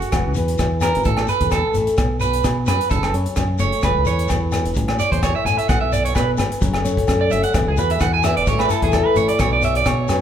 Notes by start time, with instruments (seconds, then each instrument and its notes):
Already playing: clean electric guitar F#4
0.02 closed hi-hat
0.12 fingered electric bass E1, steel-string acoustic guitar E3, kick, cross-stick, closed hi-hat, low agogo, shekere
0.26 fingered electric bass C#2
0.34 fingered electric bass E2, steel-string acoustic guitar B4, closed hi-hat, shekere
0.48 closed hi-hat
0.58 fingered electric bass E2, kick, cross-stick, closed hi-hat, low agogo, shekere
0.80 steel-string acoustic guitar B3, clean electric guitar A#4, cross-stick, closed hi-hat, low agogo, shekere
0.95 fingered electric bass G#1, closed hi-hat
1.04 fingered electric bass A1, steel-string acoustic guitar A2, clean electric guitar A4, kick, closed hi-hat, shekere
1.17 cross-stick, low agogo
1.27 steel-string acoustic guitar A4, clean electric guitar B4, closed hi-hat, shekere
1.40 fingered electric bass E2, kick, closed hi-hat
1.51 clean electric guitar A4, kick, cross-stick, closed hi-hat, low agogo, shekere
1.74 fingered electric bass A1, steel-string acoustic guitar A3, closed hi-hat, shekere
1.87 closed hi-hat, shekere
1.97 fingered electric bass B1, kick, cross-stick, closed hi-hat, low agogo, shekere
2.20 steel-string acoustic guitar F#4, clean electric guitar B4, closed hi-hat, shekere
2.33 closed hi-hat
2.44 fingered electric bass B2, kick, cross-stick, closed hi-hat, low agogo, shekere
2.66 fingered electric bass F#2, steel-string acoustic guitar B3, clean electric guitar B4, cross-stick, closed hi-hat, low agogo, shekere
2.81 closed hi-hat
2.90 fingered electric bass F#1, steel-string acoustic guitar F#3, clean electric guitar A4, kick, closed hi-hat, shekere
3.03 cross-stick, low agogo
3.14 fingered electric bass F#2, steel-string acoustic guitar C#5, closed hi-hat
3.26 closed hi-hat
3.36 fingered electric bass F#2, kick, cross-stick, closed hi-hat, low agogo, shekere
3.59 fingered electric bass F#1, steel-string acoustic guitar A3, clean electric guitar C#5, closed hi-hat, shekere
3.72 closed hi-hat
3.81 fingered electric bass E1, steel-string acoustic guitar E3, clean electric guitar B4, kick, cross-stick, closed hi-hat, low agogo, shekere
3.96 fingered electric bass C#2
4.05 fingered electric bass E2, steel-string acoustic guitar B4, clean electric guitar C#5, closed hi-hat, shekere
4.17 closed hi-hat, shekere
4.28 fingered electric bass E2, kick, cross-stick, closed hi-hat, low agogo, shekere
4.52 muted steel-string acoustic guitar stroke, cross-stick, closed hi-hat, low agogo, shekere
4.65 fingered electric bass E1, closed hi-hat
4.74 fingered electric bass A1, kick, closed hi-hat, shekere
4.88 cross-stick, low agogo
4.99 steel-string acoustic guitar C#5, clean electric guitar D5, closed hi-hat, shekere
5.12 fingered electric bass E2, clean electric guitar C5, kick, closed hi-hat
5.23 clean electric guitar C#5, kick, cross-stick, closed hi-hat, low agogo, shekere
5.36 clean electric guitar E5
5.45 fingered electric bass A1, steel-string acoustic guitar A3, clean electric guitar G#5, closed hi-hat, shekere
5.58 clean electric guitar E5, closed hi-hat, shekere
5.68 fingered electric bass B1, steel-string acoustic guitar B2, clean electric guitar F#5, kick, cross-stick, closed hi-hat, low agogo, shekere
5.81 clean electric guitar E5
5.92 clean electric guitar D5, muted steel-string acoustic guitar stroke, closed hi-hat, shekere
6.05 clean electric guitar C#5, closed hi-hat
6.15 fingered electric bass B2, clean electric guitar B4, kick, cross-stick, closed hi-hat, low agogo, shekere
6.37 fingered electric bass G#1, steel-string acoustic guitar B3, cross-stick, closed hi-hat, low agogo, shekere
6.52 closed hi-hat
6.61 fingered electric bass F#1, steel-string acoustic guitar F#3 A3 A4 C#5, kick, closed hi-hat, shekere
6.74 cross-stick, low agogo
6.85 fingered electric bass F#2, steel-string acoustic guitar C#5, closed hi-hat, shekere
6.97 kick, closed hi-hat
7.07 fingered electric bass F#2, kick, cross-stick, closed hi-hat, low agogo, shekere
7.21 clean electric guitar D5
7.30 fingered electric bass F#1, steel-string acoustic guitar A3, clean electric guitar E5, closed hi-hat, shekere
7.43 clean electric guitar F#5, closed hi-hat, shekere
7.54 fingered electric bass E1, steel-string acoustic guitar E3, muted clean electric guitar stroke, kick, cross-stick, closed hi-hat, low agogo, shekere
7.67 fingered electric bass C#2, clean electric guitar G#4
7.77 fingered electric bass E2, steel-string acoustic guitar F#4, clean electric guitar B4, closed hi-hat, shekere
7.90 clean electric guitar E5, closed hi-hat
7.99 fingered electric bass E2, clean electric guitar F#5, kick, cross-stick, closed hi-hat, low agogo, shekere
8.14 clean electric guitar G#5
8.23 steel-string acoustic guitar B3, clean electric guitar E5, cross-stick, closed hi-hat, low agogo, shekere
8.37 fingered electric bass E1, clean electric guitar D5, closed hi-hat
8.46 fingered electric bass A1, steel-string acoustic guitar A2 A3 E4, clean electric guitar C#5, kick, closed hi-hat, shekere
8.50 steel-string acoustic guitar A4
8.59 clean electric guitar B4, cross-stick, low agogo
8.69 steel-string acoustic guitar E4, clean electric guitar A4, closed hi-hat, shekere
8.82 fingered electric bass E2, clean electric guitar G#4, kick, closed hi-hat
8.92 clean electric guitar A4, kick, cross-stick, closed hi-hat, low agogo, shekere
9.06 clean electric guitar B4
9.15 fingered electric bass A1, steel-string acoustic guitar A3, clean electric guitar C#5, closed hi-hat, shekere
9.28 clean electric guitar D5, closed hi-hat, shekere
9.39 fingered electric bass B1, steel-string acoustic guitar B2 F#4, clean electric guitar C#5, muted steel-string acoustic guitar stroke, kick, cross-stick, closed hi-hat, low agogo, shekere
9.53 clean electric guitar D5
9.62 steel-string acoustic guitar C#5, clean electric guitar E5, closed hi-hat, shekere
9.75 clean electric guitar D5, closed hi-hat
9.84 fingered electric bass B2, clean electric guitar C#5, kick, cross-stick, closed hi-hat, low agogo, shekere
10.08 fingered electric bass F#2, steel-string acoustic guitar B3, cross-stick, closed hi-hat, low agogo, shekere